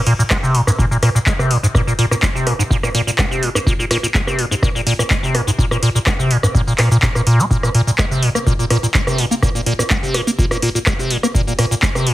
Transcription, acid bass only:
0.07 0.14 A#2 loud
0.19 0.23 A#2 medium
0.31 0.38 G#3 medium
0.43 0.56 C3 medium
0.55 0.62 A#2 medium
0.67 0.71 G#2 medium
0.79 0.86 A#2 loud
0.91 0.97 A#2 medium
1.03 1.10 A#2 loud
1.15 1.19 A#2 medium
1.27 1.34 G#3 medium
1.39 1.52 C3 medium
1.51 1.58 A#2 medium
1.63 1.67 G#2 medium
1.75 1.82 A#2 loud
1.87 1.94 A#2 medium
1.99 2.06 A#2 loud
2.11 2.15 A#2 medium
2.23 2.30 G#3 medium
2.35 2.48 C3 medium
2.47 2.54 A#2 medium
2.59 2.63 G#2 medium
2.71 2.78 A#2 medium
2.83 2.90 A#2 medium
2.95 3.02 A#2 loud
3.07 3.11 A#2 medium
3.19 3.26 G#3 medium
3.31 3.44 C3 medium
3.43 3.50 A#2 medium
3.55 3.59 G#2 medium
3.67 3.74 A#2 loud
3.79 3.86 A#2 medium
3.91 3.98 A#2 loud
4.03 4.07 A#2 medium
4.15 4.22 G#3 medium
4.27 4.40 C3 medium
4.39 4.46 A#2 medium
4.51 4.55 G#2 medium
4.63 4.70 A#2 loud
4.75 4.82 A#2 medium
4.87 4.94 A#2 loud
4.99 5.03 A#2 medium
5.11 5.18 G#3 medium
5.23 5.36 C3 medium
5.35 5.42 A#2 medium
5.47 5.51 G#2 medium
5.59 5.66 A#2 loud
5.71 5.77 A#2 medium
5.83 5.90 A#2 loud
5.95 5.99 A#2 medium
6.07 6.14 G#3 medium
6.19 6.32 C3 medium
6.31 6.38 A#2 medium
6.43 6.47 G#2 medium
6.55 6.62 A#2 medium
6.67 6.74 A#2 medium
6.79 6.89 A#2 medium
6.91 6.98 A#2 loud
7.03 7.10 A#2 medium
7.15 7.22 A#2 medium
7.27 7.41 A#2 loud
7.39 7.46 A#3 medium
7.51 7.58 A#2 loud
7.63 7.70 A#2 medium
7.75 7.82 A#2 loud
7.87 7.91 A#2 medium
7.99 8.06 G#3 medium
8.11 8.24 C3 medium
8.23 8.30 A#2 medium
8.35 8.39 A#3 medium
8.47 8.54 A#2 loud
8.59 8.65 A#2 medium
8.71 8.78 A#2 loud
8.83 8.87 A#2 medium
8.95 9.02 G#3 medium
9.07 9.20 C3 medium
9.19 9.26 A#2 medium
9.31 9.35 A#3 medium
9.43 9.50 A#2 loud
9.55 9.61 A#2 medium
9.66 9.73 A#2 loud
9.79 9.83 A#2 medium
9.90 9.97 G#3 medium
10.03 10.16 C3 medium
10.14 10.21 A#2 medium
10.27 10.31 A#3 medium
10.39 10.46 A#2 loud
10.51 10.57 A#2 medium
10.63 10.70 A#2 loud
10.75 10.79 A#2 medium
10.87 10.94 G#3 medium
10.99 11.12 C3 medium
11.11 11.18 A#2 medium
11.23 11.27 A#3 medium
11.35 11.42 A#2 loud
11.47 11.54 A#2 medium
11.59 11.66 A#2 loud
11.71 11.75 A#2 medium
11.83 11.90 G#3 medium
11.95 12.08 C3 medium
12.07 12.14 A#2 medium

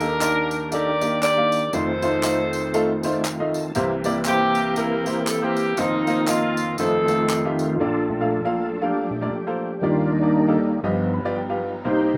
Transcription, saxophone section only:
0.00 0.68 D4 medium
0.00 0.68 G4 medium
0.00 0.68 A#4 loud
0.72 1.22 G4 medium
0.72 1.22 A#4 medium
0.72 1.21 D5 loud
1.22 1.70 G4 medium
1.22 1.70 A#4 medium
1.22 1.70 D5 loud
1.74 3.22 D#4 medium
1.74 3.22 A4 medium
1.74 3.25 C5 loud
4.27 5.24 A#3 medium
4.27 4.76 E4 medium
4.27 4.74 G4 loud
4.77 5.41 E4 medium
4.77 5.40 G4 medium
4.77 5.24 A#4 loud
5.27 5.41 A4 loud
5.42 5.75 A#3 medium
5.42 5.75 E4 medium
5.42 5.78 G4 loud
5.78 6.28 A#3 medium
5.78 6.28 C4 medium
5.78 6.28 D#4 loud
6.29 6.76 A#3 medium
6.29 6.76 C4 medium
6.29 6.79 F4 medium
6.79 7.76 C4 medium
6.79 7.77 D#4 medium
6.79 7.55 A4 medium

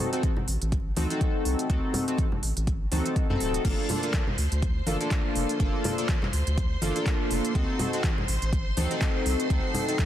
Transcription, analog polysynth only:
0.13 0.31 C4 medium
0.13 0.31 D#4 medium
0.13 0.31 F#4 medium
0.13 0.31 A4 medium
0.96 1.07 C4 medium
0.96 1.07 D#4 medium
0.96 1.07 F#4 medium
0.96 1.07 A4 medium
1.10 1.67 C4 medium
1.10 1.67 D#4 medium
1.10 1.67 F#4 medium
1.10 1.67 A4 medium
1.69 2.04 C4 medium
1.69 2.05 D#4 medium
1.69 2.05 F#4 medium
1.69 2.05 A4 medium
2.08 2.26 C4 medium
2.08 2.26 D#4 medium
2.08 2.26 F#4 medium
2.08 2.26 A4 medium
2.91 3.26 C4 medium
2.91 3.27 D#4 medium
2.91 3.27 F#4 medium
2.91 3.27 A4 medium
3.30 3.62 C4 medium
3.30 3.62 D#4 medium
3.30 3.62 F#4 medium
3.30 3.62 A4 loud
3.64 4.00 A#3 medium
3.64 4.00 D4 medium
3.64 4.00 F4 medium
3.64 4.00 A4 medium
4.03 4.21 A#3 medium
4.03 4.21 D4 medium
4.03 4.21 F4 medium
4.03 4.21 A4 medium
4.87 4.97 A#3 medium
4.87 4.97 D4 medium
4.87 4.97 F4 medium
4.87 4.97 A4 medium
5.00 5.57 A#3 medium
5.00 5.57 D4 medium
5.00 5.57 F4 medium
5.00 5.58 A4 medium
5.60 5.95 A#3 medium
5.60 5.95 D4 medium
5.60 5.95 F4 medium
5.60 5.95 A4 medium
5.98 6.16 A#3 medium
5.98 6.16 D4 medium
5.98 6.16 F4 medium
5.98 6.17 A4 medium
6.82 6.92 A#3 medium
6.82 6.92 D4 medium
6.82 6.92 F4 medium
6.82 6.93 A4 medium
6.95 7.52 A#3 medium
6.95 7.52 D4 medium
6.95 7.53 F4 medium
6.95 7.53 A4 medium
7.55 7.90 C4 medium
7.55 7.90 D#4 medium
7.55 7.90 F#4 medium
7.55 7.90 A4 loud
7.93 8.11 C4 medium
7.93 8.12 D#4 medium
7.93 8.12 F#4 medium
7.93 8.12 A4 medium
8.77 8.87 C4 medium
8.77 8.87 D#4 medium
8.77 8.88 F#4 medium
8.77 8.88 A4 medium
8.90 9.47 C4 medium
8.90 9.48 D#4 medium
8.90 9.48 F#4 medium
8.90 9.48 A4 medium
9.50 9.85 C4 medium
9.50 9.85 D#4 medium
9.50 9.85 F#4 medium
9.50 9.85 A4 medium
9.88 10.05 C4 medium
9.88 10.05 D#4 medium
9.88 10.05 F#4 medium
9.88 10.05 A4 medium

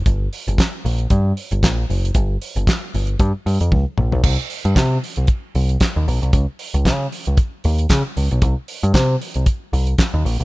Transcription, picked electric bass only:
0.06 0.27 G1 medium
0.47 0.56 G1 medium
0.85 1.05 A#1 medium
1.11 1.31 G2 medium
1.51 1.60 G1 medium
1.63 1.84 A#1 medium
1.90 2.10 F#1 medium
2.15 2.36 G1 loud
2.56 2.65 G1 medium
2.94 3.15 G1 medium
3.20 3.31 G2 loud
3.46 3.58 G2 medium
3.61 3.70 F2 medium
3.72 3.84 C#2 medium
3.98 4.13 A#1 medium
4.13 4.22 B1 medium
4.24 4.36 C2 medium
4.65 4.74 G2 medium
4.76 4.97 C3 loud
5.17 5.26 C2 medium
5.55 5.76 C2 medium
5.96 6.05 D#2 medium
6.08 6.19 B1 medium
6.22 6.31 C2 medium
6.34 6.45 C#2 loud
6.74 6.87 C#2 medium
6.86 7.06 C#3 medium
7.27 7.36 C#2 medium
7.65 7.85 D#2 loud
7.90 8.02 C#3 loud
8.17 8.28 C#2 medium
8.31 8.40 B1 medium
8.42 8.54 C2 loud
8.83 8.92 G2 loud
8.94 9.15 C3 loud
9.36 9.44 C2 medium
9.73 9.93 C2 medium
10.14 10.23 D#2 medium
10.25 10.36 A#1 loud
10.40 10.44 B1 medium

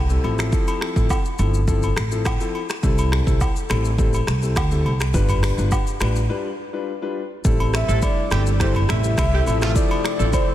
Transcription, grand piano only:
0.09 0.27 G3 medium
0.09 0.22 C4 medium
0.09 0.22 E4 medium
0.09 0.22 A4 medium
0.23 0.50 F3 medium
0.23 0.50 C4 medium
0.23 0.50 E4 medium
0.23 0.50 A4 loud
0.52 0.93 F3 medium
0.52 0.93 C4 medium
0.52 0.93 E4 medium
0.52 0.93 A4 loud
0.96 1.14 F3 medium
0.96 1.14 C4 medium
0.96 1.14 E4 medium
0.96 1.14 A4 medium
1.39 1.57 F3 medium
1.39 1.57 C4 medium
1.39 1.57 E4 medium
1.39 1.57 A4 medium
1.68 1.86 F3 medium
1.68 1.86 C4 medium
1.68 1.86 E4 medium
1.68 1.86 A4 loud
2.11 2.29 F3 medium
2.11 2.29 C4 medium
2.11 2.29 E4 medium
2.11 2.29 A4 medium
2.40 2.58 F3 medium
2.40 2.58 C4 medium
2.40 2.58 E4 medium
2.40 2.58 A4 medium
2.83 3.23 G3 loud
2.83 3.23 C4 medium
2.83 3.23 E4 medium
2.83 3.24 A4 loud
3.27 3.44 G3 medium
3.27 3.44 C4 medium
3.27 3.44 E4 medium
3.27 3.45 A4 medium
3.69 3.88 G3 medium
3.69 3.88 C4 medium
3.69 3.88 E4 medium
3.69 3.88 A4 medium
3.98 4.17 G3 medium
3.98 4.17 C4 medium
3.98 4.17 E4 medium
3.98 4.17 A4 loud
4.42 4.60 G3 medium
4.42 4.60 C4 medium
4.42 4.60 E4 medium
4.42 4.60 A4 medium
4.71 4.89 G3 medium
4.71 4.89 C4 medium
4.71 4.89 E4 medium
4.71 4.89 A4 medium
5.14 5.54 G3 loud
5.14 5.54 D4 medium
5.14 5.54 F4 medium
5.14 5.54 B4 loud
5.58 5.75 G3 medium
5.58 5.75 D4 medium
5.58 5.75 F4 medium
5.58 5.75 B4 medium
6.00 6.19 G3 medium
6.00 6.19 D4 medium
6.00 6.19 F4 medium
6.00 6.19 B4 medium
6.29 6.47 G3 medium
6.29 6.48 D4 medium
6.29 6.48 F4 medium
6.29 6.48 B4 loud
6.73 6.90 G3 medium
6.73 6.91 D4 medium
6.73 6.91 F4 medium
6.73 6.91 B4 medium
7.02 7.19 G3 medium
7.02 7.19 D4 medium
7.02 7.19 F4 medium
7.02 7.20 B4 medium
7.44 7.85 G3 loud
7.44 7.85 C4 medium
7.44 7.85 E4 medium
7.44 7.85 A4 loud
7.88 8.06 G3 medium
7.88 8.06 C4 medium
7.88 8.06 E4 medium
7.88 8.06 A4 medium
8.31 8.49 G3 medium
8.31 8.49 C4 medium
8.31 8.50 E4 medium
8.31 8.50 A4 medium
8.60 8.78 G3 medium
8.60 8.78 C4 medium
8.60 8.78 E4 medium
8.60 8.78 A4 loud
9.04 9.21 G3 medium
9.04 9.21 C4 medium
9.04 9.21 E4 medium
9.04 9.21 A4 medium
9.32 9.50 G3 medium
9.32 9.45 C4 medium
9.32 9.45 E4 medium
9.32 9.45 A4 medium
9.46 9.73 F3 medium
9.46 9.73 C4 medium
9.46 9.73 E4 medium
9.46 9.73 A4 loud
9.75 10.16 F3 loud
9.75 10.16 C4 medium
9.75 10.16 E4 medium
9.75 10.16 A4 loud
10.19 10.37 F3 medium
10.19 10.37 C4 medium
10.19 10.37 E4 medium
10.19 10.37 A4 medium

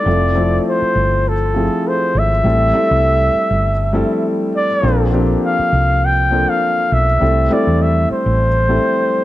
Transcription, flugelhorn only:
0.00 0.63 D5 medium
0.69 1.30 C5 medium
1.28 1.90 A4 medium
1.88 2.20 C5 medium
2.18 4.28 E5 loud
4.54 5.10 D5 medium
5.44 6.06 F5 medium
6.05 6.51 G5 medium
6.50 6.95 F5 medium
6.93 7.54 E5 medium
7.53 7.84 D5 medium
7.82 8.11 E5 medium
8.12 9.24 C5 medium

